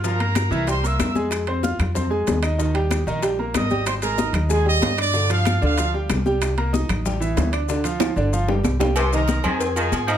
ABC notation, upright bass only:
X:1
M:4/4
L:1/8
Q:1/4=188
K:Cm
V:1 name="Upright bass" clef=bass
G,,3 C,,3 F,,2- | F,,3 F,,3 E,,2- | E,,3 B,,,3 A,,,2- | A,,,3 E,,3 G,,2- |
G,,3 D,,3 C,,2- | C,,3 =A,,,3 D,,2- | D,,3 G,,,3 C,,2- | C,,3 F,,3 A,,2 |]